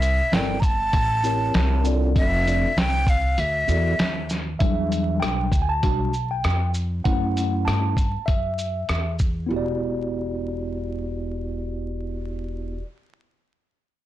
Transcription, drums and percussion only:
0.02 closed hi-hat soft
0.02 shaker soft
0.33 snare loud
0.33 closed hi-hat medium
0.62 kick medium
0.62 closed hi-hat medium
0.62 shaker medium
0.93 kick medium
0.93 closed hi-hat medium
1.24 shaker medium
1.54 snare loud
1.54 closed hi-hat medium
1.85 shaker medium
2.16 kick loud
2.16 closed hi-hat medium
2.47 closed hi-hat soft
2.47 shaker soft
2.78 snare loud
2.78 closed hi-hat medium
3.07 kick medium
3.07 closed hi-hat soft
3.07 shaker medium
3.38 closed hi-hat medium
3.68 shaker medium
3.99 snare loud
3.99 closed hi-hat medium
4.29 snare soft
4.29 shaker medium
4.60 kick loud
4.60 closed hi-hat medium
4.92 closed hi-hat soft
4.92 shaker soft
5.22 cross-stick loud
5.22 closed hi-hat medium
5.52 kick medium
5.52 closed hi-hat soft
5.52 shaker soft
5.83 kick medium
5.83 closed hi-hat medium
6.13 shaker soft
6.44 cross-stick loud
6.44 closed hi-hat medium
6.74 shaker medium
7.05 kick loud
7.05 closed hi-hat medium
7.37 closed hi-hat soft
7.37 shaker soft
7.68 cross-stick loud
7.68 closed hi-hat medium
7.97 kick medium
7.97 closed hi-hat soft
7.97 shaker soft
8.28 kick medium
8.28 closed hi-hat medium
8.58 shaker soft
8.89 cross-stick medium
8.89 closed hi-hat medium
9.19 kick medium
9.19 shaker medium

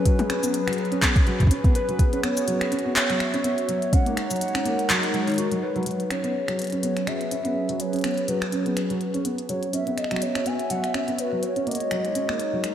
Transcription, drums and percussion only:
0.06 kick medium
0.06 closed hi-hat medium
0.19 closed hi-hat soft
0.19 high tom medium
0.30 finger snap medium
0.30 closed hi-hat medium
0.43 closed hi-hat soft
0.43 cabasa medium
0.54 closed hi-hat medium
0.68 finger snap medium
0.68 closed hi-hat soft
0.73 closed hi-hat medium
0.78 closed hi-hat soft
0.85 closed hi-hat soft
0.92 closed hi-hat soft
1.02 finger snap medium
1.02 kick medium
1.02 clap loud
1.02 closed hi-hat medium
1.16 kick loud
1.16 closed hi-hat soft
1.27 closed hi-hat soft
1.40 kick soft
1.40 closed hi-hat soft
1.43 kick medium
1.47 kick medium
1.47 closed hi-hat medium
1.64 kick loud
1.64 closed hi-hat soft
1.75 closed hi-hat medium
1.89 closed hi-hat soft
1.99 kick medium
1.99 closed hi-hat medium
2.13 closed hi-hat soft
2.23 finger snap medium
2.23 closed hi-hat medium
2.37 closed hi-hat soft
2.37 cabasa medium
2.48 closed hi-hat medium
2.61 finger snap medium
2.61 closed hi-hat soft
2.72 closed hi-hat medium
2.79 closed hi-hat soft
2.96 clap loud
2.96 closed hi-hat medium
3.10 finger snap soft
3.10 closed hi-hat soft
3.20 finger snap medium
3.20 closed hi-hat soft
3.34 closed hi-hat soft
3.44 closed hi-hat medium
3.58 closed hi-hat soft
3.69 closed hi-hat medium
3.82 closed hi-hat soft
3.93 kick medium
3.93 closed hi-hat loud
4.06 closed hi-hat soft
4.17 finger snap medium
4.17 closed hi-hat medium
4.31 closed hi-hat soft
4.31 cabasa medium
4.36 closed hi-hat soft
4.41 closed hi-hat medium
4.48 closed hi-hat soft
4.55 finger snap medium
4.55 closed hi-hat soft
4.66 closed hi-hat medium
4.79 closed hi-hat soft
4.90 finger snap medium
4.90 clap loud
4.90 closed hi-hat loud
5.03 closed hi-hat soft
5.14 closed hi-hat soft
5.28 closed hi-hat soft
5.30 closed hi-hat soft
5.32 closed hi-hat soft
5.34 closed hi-hat soft
5.36 closed hi-hat soft
5.38 closed hi-hat loud
5.52 closed hi-hat soft
5.76 closed hi-hat soft
5.83 closed hi-hat soft
5.86 closed hi-hat medium
5.91 closed hi-hat soft
6.00 closed hi-hat soft
6.10 finger snap medium
6.10 closed hi-hat medium
6.24 closed hi-hat soft
6.48 finger snap medium
6.48 closed hi-hat soft
6.59 closed hi-hat medium
6.62 closed hi-hat soft
6.64 closed hi-hat soft
6.67 closed hi-hat soft
6.70 closed hi-hat soft
6.72 closed hi-hat soft
6.83 closed hi-hat medium
6.97 finger snap soft
6.97 closed hi-hat soft
7.07 finger snap medium
7.07 closed hi-hat soft
7.21 closed hi-hat soft
7.31 closed hi-hat medium
7.45 closed hi-hat soft
7.69 closed hi-hat soft
7.80 closed hi-hat medium
7.93 closed hi-hat soft
7.96 closed hi-hat soft
7.99 closed hi-hat soft
8.01 finger snap medium
8.01 closed hi-hat soft
8.04 closed hi-hat medium
8.07 closed hi-hat soft
8.11 closed hi-hat soft
8.14 closed hi-hat soft
8.18 closed hi-hat soft
8.28 closed hi-hat medium
8.42 finger snap medium
8.42 closed hi-hat soft
8.52 closed hi-hat medium
8.66 closed hi-hat soft
8.77 finger snap medium
8.77 closed hi-hat medium
8.90 closed hi-hat soft
9.01 closed hi-hat soft
9.14 closed hi-hat soft
9.25 closed hi-hat medium
9.38 closed hi-hat soft
9.49 closed hi-hat medium
9.63 closed hi-hat soft
9.73 closed hi-hat medium
9.87 closed hi-hat soft
9.98 finger snap soft
9.98 closed hi-hat medium
10.04 finger snap soft
10.11 finger snap soft
10.11 closed hi-hat soft
10.16 finger snap medium
10.22 closed hi-hat medium
10.35 finger snap medium
10.35 closed hi-hat soft
10.46 closed hi-hat medium
10.60 closed hi-hat soft
10.70 closed hi-hat medium
10.84 finger snap soft
10.84 closed hi-hat soft
10.94 finger snap medium
10.94 closed hi-hat soft
11.08 closed hi-hat soft
11.19 closed hi-hat medium
11.43 closed hi-hat medium
11.56 closed hi-hat soft
11.67 closed hi-hat soft
11.71 closed hi-hat medium
11.75 closed hi-hat medium
11.80 closed hi-hat soft
11.91 finger snap medium
11.91 closed hi-hat medium
12.05 closed hi-hat soft
12.15 closed hi-hat medium
12.29 finger snap medium
12.40 closed hi-hat medium
12.64 finger snap medium
12.64 closed hi-hat medium

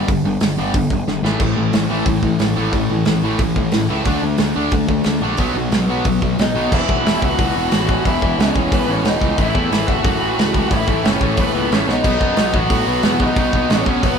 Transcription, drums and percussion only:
0.08 kick loud
0.08 open hi-hat medium
0.40 snare loud
0.40 open hi-hat medium
0.74 kick loud
0.74 open hi-hat medium
0.90 kick medium
1.08 snare medium
1.25 snare medium
1.40 kick loud
1.40 crash medium
1.73 snare loud
1.73 open hi-hat medium
2.06 kick loud
2.06 open hi-hat medium
2.23 kick medium
2.39 snare loud
2.39 open hi-hat medium
2.73 kick loud
2.73 open hi-hat soft
3.05 snare loud
3.05 open hi-hat medium
3.39 kick loud
3.39 open hi-hat medium
3.56 kick medium
3.72 snare loud
3.72 open hi-hat medium
4.05 kick loud
4.05 open hi-hat medium
4.38 snare loud
4.38 open hi-hat medium
4.71 kick loud
4.71 open hi-hat medium
4.89 kick medium
5.04 snare loud
5.04 open hi-hat medium
5.37 kick loud
5.37 open hi-hat medium
5.72 snare loud
5.72 open hi-hat medium
6.05 kick loud
6.05 open hi-hat medium
6.22 kick medium
6.39 snare loud
6.39 open hi-hat medium
6.72 kick loud
6.72 crash loud
6.89 kick medium
7.06 snare loud
7.06 open hi-hat medium
7.22 kick loud
7.39 kick loud
7.39 open hi-hat medium
7.71 snare loud
7.71 open hi-hat medium
7.89 kick medium
8.05 kick loud
8.05 open hi-hat medium
8.22 kick loud
8.40 snare loud
8.40 open hi-hat medium
8.56 kick loud
8.72 kick loud
8.72 open hi-hat medium
9.05 snare loud
9.05 open hi-hat medium
9.21 kick loud
9.38 kick loud
9.38 open hi-hat medium
9.55 kick medium
9.72 snare loud
9.72 open hi-hat medium
9.88 kick loud
10.05 kick loud
10.05 open hi-hat medium
10.39 snare loud
10.39 open hi-hat medium
10.54 kick loud
10.71 kick loud
10.71 open hi-hat medium
10.88 kick medium
11.05 snare loud
11.05 open hi-hat medium
11.21 kick loud
11.37 kick loud
11.37 open hi-hat medium
11.72 snare loud
11.72 open hi-hat medium
11.89 snare medium
12.04 kick loud
12.04 crash loud
12.21 kick loud
12.37 snare loud
12.37 open hi-hat medium
12.54 kick loud
12.70 kick loud
12.70 open hi-hat medium
13.03 snare loud
13.03 open hi-hat medium
13.20 kick medium
13.36 kick loud
13.36 open hi-hat medium
13.53 kick medium
13.70 snare loud
13.70 open hi-hat medium
13.86 kick loud
14.03 kick loud
14.03 open hi-hat medium

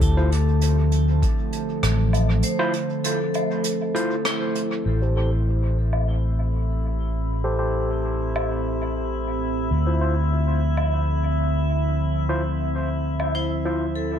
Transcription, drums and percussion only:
0.01 kick loud
0.01 closed hi-hat medium
0.32 closed hi-hat soft
0.61 closed hi-hat medium
0.92 closed hi-hat soft
1.23 kick loud
1.23 closed hi-hat medium
1.53 closed hi-hat soft
1.83 cross-stick medium
1.83 closed hi-hat medium
2.13 closed hi-hat soft
2.13 low woodblock medium
2.43 closed hi-hat medium
2.73 closed hi-hat soft
3.04 closed hi-hat medium
3.34 closed hi-hat soft
3.34 low woodblock medium
3.64 closed hi-hat medium
3.96 closed hi-hat soft
4.25 cross-stick medium
4.25 closed hi-hat medium
4.55 closed hi-hat soft
5.93 low woodblock medium
8.36 low woodblock medium
10.77 low woodblock medium
13.20 low woodblock medium

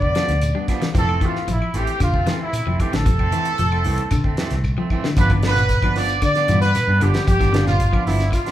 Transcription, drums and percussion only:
0.02 kick medium
0.15 snare medium
0.15 closed hi-hat soft
0.15 shekere soft
0.28 snare soft
0.28 closed hi-hat soft
0.41 closed hi-hat medium
0.41 claves medium
0.41 shekere medium
0.68 kick medium
0.68 snare soft
0.68 closed hi-hat soft
0.68 claves medium
0.68 shekere soft
0.82 snare medium
0.82 closed hi-hat soft
0.95 kick medium
0.95 closed hi-hat medium
0.95 shekere medium
1.09 claves medium
1.21 kick medium
1.21 closed hi-hat soft
1.21 shekere soft
1.36 snare soft
1.48 closed hi-hat medium
1.48 shekere medium
1.62 claves medium
1.74 closed hi-hat medium
1.74 shekere soft
1.87 closed hi-hat soft
2.00 kick medium
2.00 closed hi-hat medium
2.00 claves medium
2.00 shekere medium
2.14 kick medium
2.27 snare medium
2.27 closed hi-hat soft
2.27 shekere soft
2.53 closed hi-hat medium
2.53 claves medium
2.53 shekere medium
2.80 kick medium
2.80 closed hi-hat medium
2.80 claves medium
2.80 shekere soft
2.93 snare medium
2.93 closed hi-hat medium
3.06 kick loud
3.06 closed hi-hat medium
3.06 shekere medium
3.19 kick medium
3.19 claves medium
3.32 closed hi-hat medium
3.32 shekere soft
3.45 closed hi-hat soft
3.58 closed hi-hat medium
3.58 shekere medium
3.72 claves medium
3.84 open hi-hat medium
3.84 shekere soft
3.98 closed hi-hat soft
4.11 kick medium
4.11 closed hi-hat medium
4.11 claves medium
4.11 shekere loud
4.24 kick medium
4.37 snare medium
4.37 closed hi-hat medium
4.37 shekere soft
4.50 snare soft
4.50 closed hi-hat soft
4.64 kick soft
4.64 claves medium
4.64 shekere medium
4.90 kick medium
4.90 claves medium
4.90 shekere soft
5.04 snare medium
5.17 kick medium
5.17 closed hi-hat medium
5.17 shekere medium
5.30 kick medium
5.30 closed hi-hat soft
5.30 claves medium
5.42 snare medium
5.42 closed hi-hat medium
5.42 shekere soft
5.56 snare soft
5.56 closed hi-hat soft
5.56 shekere loud
5.69 kick medium
5.69 closed hi-hat medium
5.69 shekere medium
5.82 kick medium
5.82 closed hi-hat soft
5.82 claves medium
5.96 snare soft
5.96 open hi-hat medium
5.96 shekere soft
6.08 closed hi-hat soft
6.08 shekere medium
6.22 kick medium
6.22 closed hi-hat medium
6.22 claves medium
6.22 shekere medium
6.35 snare soft
6.35 closed hi-hat soft
6.48 closed hi-hat soft
6.48 shekere medium
6.62 snare soft
6.62 closed hi-hat soft
6.75 snare soft
6.75 closed hi-hat medium
6.75 claves medium
6.75 shekere medium
7.01 closed hi-hat medium
7.01 claves medium
7.01 shekere soft
7.14 snare medium
7.14 closed hi-hat soft
7.14 shekere medium
7.27 kick loud
7.27 closed hi-hat medium
7.27 shekere medium
7.41 kick medium
7.41 snare soft
7.41 closed hi-hat soft
7.41 claves medium
7.54 snare medium
7.54 closed hi-hat medium
7.54 shekere soft
7.67 snare soft
7.67 closed hi-hat soft
7.67 shekere loud
7.80 kick medium
7.80 closed hi-hat medium
7.80 shekere medium
7.93 kick medium
7.93 claves medium
8.07 snare soft
8.07 open hi-hat medium
8.07 shekere soft
8.20 snare soft
8.20 closed hi-hat soft
8.20 shekere medium
8.33 kick medium
8.33 closed hi-hat medium
8.33 claves medium
8.33 shekere medium
8.46 snare soft
8.46 closed hi-hat soft

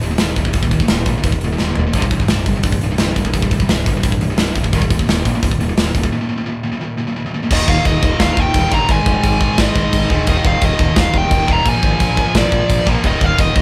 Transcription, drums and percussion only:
0.01 open hi-hat medium
0.18 snare loud
0.18 open hi-hat medium
0.36 kick medium
0.36 open hi-hat soft
0.45 kick medium
0.53 kick medium
0.53 open hi-hat medium
0.63 kick medium
0.71 kick medium
0.71 open hi-hat medium
0.80 kick medium
0.88 snare loud
0.88 open hi-hat medium
1.06 kick medium
1.06 open hi-hat medium
1.23 kick loud
1.23 open hi-hat medium
1.32 kick medium
1.41 open hi-hat medium
1.58 snare medium
1.75 floor tom medium
1.93 kick loud
1.93 open hi-hat medium
2.02 kick medium
2.11 kick medium
2.11 open hi-hat medium
2.20 kick medium
2.28 snare loud
2.28 open hi-hat medium
2.46 kick medium
2.46 open hi-hat medium
2.63 kick loud
2.63 open hi-hat medium
2.72 kick medium
2.81 open hi-hat medium
2.98 snare loud
2.98 open hi-hat medium
3.16 kick medium
3.16 open hi-hat medium
3.25 kick medium
3.33 kick medium
3.33 open hi-hat medium
3.42 kick medium
3.51 kick medium
3.51 open hi-hat medium
3.60 kick medium
3.69 snare loud
3.69 open hi-hat medium
3.86 kick medium
3.86 open hi-hat medium
4.03 kick loud
4.03 open hi-hat medium
4.12 kick medium
4.21 open hi-hat soft
4.38 snare loud
4.38 open hi-hat medium
4.55 kick medium
4.55 open hi-hat soft
4.64 kick medium
4.73 kick medium
4.73 open hi-hat medium
4.82 kick medium
4.90 kick medium
4.90 open hi-hat medium
4.99 kick medium
5.09 snare loud
5.09 open hi-hat medium
5.25 kick medium
5.25 open hi-hat medium
5.43 kick loud
5.43 open hi-hat medium
5.51 kick medium
5.61 open hi-hat medium
5.77 snare loud
5.77 open hi-hat medium
5.95 kick medium
5.95 open hi-hat medium
6.03 kick medium
7.51 kick medium
7.51 crash loud
7.51 crash medium
7.68 kick loud
7.85 kick medium
7.85 crash medium
8.03 kick loud
8.20 kick medium
8.20 snare loud
8.20 crash medium
8.37 kick medium
8.54 kick medium
8.54 crash medium
8.72 kick medium
8.88 kick loud
8.88 crash medium
9.06 kick loud
9.23 kick medium
9.23 crash medium
9.41 kick loud
9.58 kick loud
9.58 snare loud
9.58 crash medium
9.76 kick medium
9.93 kick loud
9.93 crash medium
10.10 kick medium
10.27 kick loud
10.27 crash medium
10.45 kick loud
10.61 kick medium
10.61 crash medium
10.79 kick loud
10.96 kick loud
10.96 snare loud
10.96 crash medium
11.14 kick medium
11.31 kick loud
11.31 crash medium
11.48 kick medium
11.65 kick loud
11.65 crash medium
11.83 kick loud
12.00 kick loud
12.00 crash medium
12.17 kick medium
12.35 kick medium
12.35 snare loud
12.35 crash medium
12.52 kick medium
12.70 kick medium
12.70 crash medium
12.87 kick medium
13.04 kick medium
13.04 crash medium
13.21 kick loud
13.38 kick loud
13.38 crash medium
13.56 kick loud

